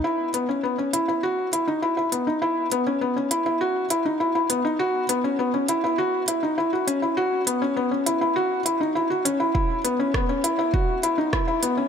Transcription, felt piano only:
\new Staff \with { instrumentName = "Felt piano" } { \time 4/4 \key fis \dorian \tempo 4 = 101 e'8 b16 cis'16 b16 cis'16 e'16 e'16 fis'8 e'16 dis'16 e'16 e'16 b16 dis'16 | e'8 b16 cis'16 b16 cis'16 e'16 e'16 fis'8 e'16 dis'16 e'16 e'16 b16 dis'16 | fis'8 b16 cis'16 b16 cis'16 e'16 e'16 fis'8 e'16 dis'16 e'16 fis'16 cis'16 e'16 | fis'8 b16 cis'16 b16 cis'16 e'16 e'16 fis'8 e'16 dis'16 e'16 fis'16 cis'16 e'16 |
e'8 b16 cis'16 b16 cis'16 e'16 e'16 fis'8 e'16 dis'16 e'16 e'16 b16 cis'16 | }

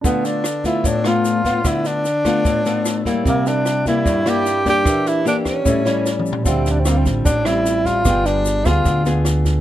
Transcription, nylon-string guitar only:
\new Staff \with { instrumentName = "Nylon-string guitar" } { \time 4/4 \key d \minor \tempo 4 = 150 << { <a b f'>4 r8 <a b f'>4 <a b f'>4 <a b f'>8 | <a b f'>4 r8 <a b f'>4 <a b f'>4 <g bes e'>8~ | <g bes e'>4. <g bes e'>4 <g bes e'>4 <bes d' g'>8~ | <bes d' g'>4 <bes d' g'>4 <g cis' e'>8 <g cis' e'>4. |
<g c' f'>4 <g c' f'>4 r8 <g c'>4. | <b f' aes'>4. <b f' aes'>4 <b f' aes'>4. | } \\ { d2 a,2 | d2 a,2 | c2 g,2 | e2 a,2 |
d2 a,2 | g2 d2 | } >> }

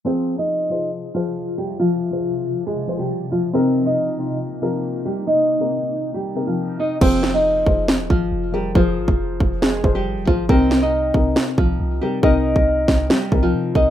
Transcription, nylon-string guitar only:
\new Staff \with { instrumentName = "Nylon-string guitar" } { \time 4/4 \key f \minor \tempo 4 = 138 <c' c''>8. <ees' ees''>4~ <ees' ees''>16 r8 <f f'>4 <g g'>8 | <f f'>2 <aes aes'>8. <g g'>8. <f f'>8 | <c' c''>8. <ees' ees''>4~ <ees' ees''>16 r8 <f f'>4 <g g'>8 | <ees' ees''>2 <g g'>8. <f f'>8. <ees' ees''>8 |
<c' c''>8. <ees' ees''>4~ <ees' ees''>16 r8 <f f'>4 <g g'>8 | <f f'>2 <aes aes'>8. <g g'>8. <f f'>8 | <c' c''>8. <ees' ees''>4~ <ees' ees''>16 r8 <f f'>4 <g g'>8 | <ees' ees''>2 <g g'>8. <f f'>8. <ees' ees''>8 | }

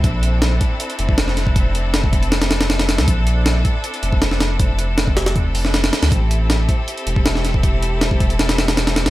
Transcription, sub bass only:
\new Staff \with { instrumentName = "Sub bass" } { \clef bass \time 4/4 \key bes \lydian \tempo 4 = 158 bes,,4. r4 f,,4.~ | f,,2.~ f,,8. d,16 | bes,,4. r4 f,,4.~ | f,,2.~ f,,8 r16 d,16 |
a,,4. r4 e,,4.~ | e,,2.~ e,,8. d,16 | }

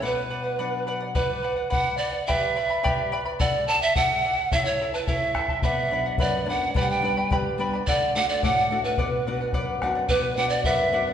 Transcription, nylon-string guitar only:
\new Staff \with { instrumentName = "Nylon-string guitar" } { \time 2/4 \key b \minor \tempo 4 = 107 b,4 <fis b d'>4 | r2 | r2 | r2 |
r2 | b,8 <fis b d'>8 fis,8 <fis b d'>8 | g,8 <g b d'>8 d8 <g b d'>8 | d8 <a d' fis'>8 a,8 <a d' fis'>8 |
b,8 <b d' fis'>8 fis,8 <b d' fis'>8 | b,8 <b d' fis'>8 fis,8 <b d' fis'>8 | }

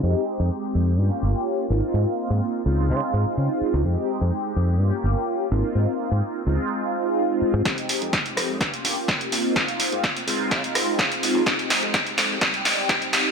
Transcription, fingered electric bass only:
\new Staff \with { instrumentName = "Fingered electric bass" } { \clef bass \time 4/4 \key f \minor \tempo 4 = 126 f,16 r8 f,16 r8 f,8 g,16 r16 g,,16 r8. aes,,16 r16 | aes,16 r8 aes,16 r8 des,8 des16 r16 aes,16 r16 des16 r8 des,16 | f,16 r8 f,16 r8 f,8 g,16 r16 g,,16 r8. aes,,16 r16 | aes,16 r8 aes,16 r8 des,16 r2 aes,16 |
r8. f,16 r8 f,8 g,16 r16 g,,16 r8. aes,,16 r16 | aes,16 r8 aes,16 r8 des,8 des16 r16 aes,16 r16 des16 r8 des,16 | f,16 r8 f,16 r8 f,8 g,16 r16 g,,16 r8. aes,,16 r16 | }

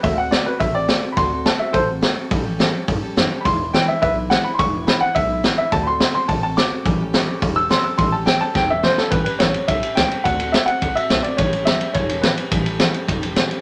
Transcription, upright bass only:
\new Staff \with { instrumentName = "Upright bass" } { \clef bass \time 4/4 \key a \mixolydian \tempo 4 = 212 d,4. r8 a,,4. r8 | d,4. r8 a,,4. r8 | a,,4. r8 g,,8 r8 fis,,8 r8 | e,,4. r8 b,,4. r8 |
e,,4. r8 b,,4. r8 | d,4. r8 a,,4. r8 | a,,4. r8 e,,4. r8 | a,,4. r8 e,,4. r8 |
a,,8 r8 a,,8 r8 b,,8 r8 cis,8 r8 | d,4. r8 c,8 r8 b,,8 r8 | a,,4. r8 e,,4. r8 | a,,4. r8 e,,4. r8 | }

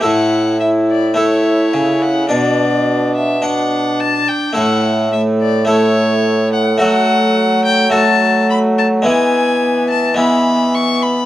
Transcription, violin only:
\new Staff \with { instrumentName = "Violin" } { \time 4/4 \key a \mixolydian \tempo 4 = 107 fis''4 e''8 d''8 cis''4. fis''8 | d''4. e''8 fis''4 a''8 g''8 | fis''4 e''8 d''8 cis''4. fis''8 | fis''4. g''8 a''4 b''8 a''8 |
gis''4. a''8 b''4 cis'''8 b''8 | }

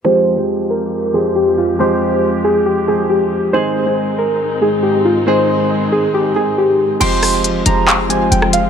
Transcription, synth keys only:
\new Staff \with { instrumentName = "Synth keys" } { \time 4/4 \key f \minor \tempo 4 = 138 c''4 r8 bes'4 aes'8 g'8 f'8 | c''4 r8 aes'8 g'8 aes'8 g'4 | c''4 r8 bes'4 aes'8 g'8 f'8 | c''4 r8 aes'8 g'8 aes'8 g'4 |
c'''4 r8 bes''4 aes''8 g''8 f''8 | }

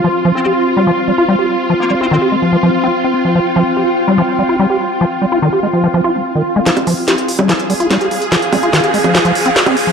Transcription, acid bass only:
\new Staff \with { instrumentName = "Acid bass" } { \clef bass \time 4/4 \key f \minor \tempo 4 = 145 f16 r16 f16 r16 g'16 r8 g16 f16 r16 g16 f'16 g16 g'16 r8 | f16 r16 g16 f'16 ees16 g'16 aes16 f16 f16 f16 r16 c'16 r16 c'16 r16 f16 | f16 r16 f16 r16 g'16 r8 g16 f16 r16 g16 f'16 g16 g'16 r8 | f16 r16 g16 f'16 ees16 g'16 aes16 f16 f16 f16 f'16 f16 r16 ees16 r16 aes16 |
f16 r16 f16 r16 g'16 r8 g16 f16 r16 g16 f'16 g16 g'16 r8 | f16 r16 g16 f'16 ees16 g'16 aes16 f16 f16 f16 r16 c'16 r16 c'16 r16 f16 | }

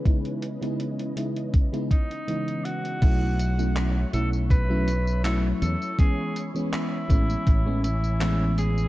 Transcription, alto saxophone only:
\new Staff \with { instrumentName = "Alto saxophone" } { \time 4/4 \key b \mixolydian \tempo 4 = 81 r2 r8 dis'4 fis'8~ | fis'4. a'8 b'4 a'8 a'8 | gis'8 r8 e'4. e'4 gis'8 | }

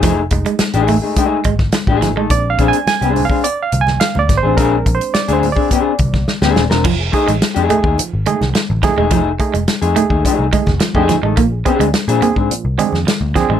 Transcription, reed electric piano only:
<<
  \new Staff \with { instrumentName = "Reed electric piano" } { \time 4/4 \key bes \major \tempo 4 = 106 c''16 r2. r8. | \tuplet 3/2 { d''8 f''8 aes''8 aes''4 f''8 d''8 f''8 aes''8 f''8 d''8 c''8 } | \tuplet 3/2 { bes'4 c''8 d''8 c''8 d''8~ } d''4 r4 | r16 <ees' gis'>16 <a ees' gis'>16 r16 <ees' gis'>16 r16 <a ees' gis'>16 r8. <a ees' gis'>16 <ees' gis'>16 r8 <a ees' gis'>16 r16 |
r16 <ees' gis'>16 <a ees' gis'>16 r16 <ees' gis'>16 r16 <a ees' gis'>16 r8. <a ees' gis'>16 <ees' gis'>16 r16 <a ees' gis'>16 <ees' gis'>16 r16 | r16 <d' aes'>16 <c' d' aes'>16 r16 <d' aes'>16 r16 <c' d' aes'>16 r8. <c' d' aes'>16 <d' aes'>16 r8 <c' d' aes'>16 r16 | }
  \new Staff \with { instrumentName = "Reed electric piano" } { \clef bass \time 4/4 \key bes \major r8 <gis a ees'>4. <gis a ees'>8 r4. | <aes c' d'>4. <aes c' d'>8 r2 | <aes c' d'>4. r2 r8 | f16 r4 f16 r8 f16 r4. r16 |
f16 r4 f16 r8 f16 r8. f16 r8. | <bes, f>16 r4 <bes, f>16 r8 <bes, f>16 r4. r16 | }
>>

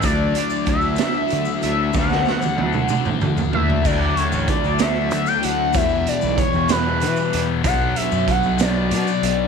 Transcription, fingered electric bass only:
\new Staff \with { instrumentName = "Fingered electric bass" } { \clef bass \time 6/8 \key d \mixolydian \tempo 4. = 63 d,8 r8 d,8 r8 d16 r16 d,8 | d,8 r8 d,8 r8 d16 r16 d,8 | d,8 r16 a,,16 r16 d,8. d16 r16 d,8 | e,8 r16 b,,16 r16 e,8. e16 r16 e,8 |
b,,8 r16 fis,16 r16 b,,8. b,16 r16 b,,8 | }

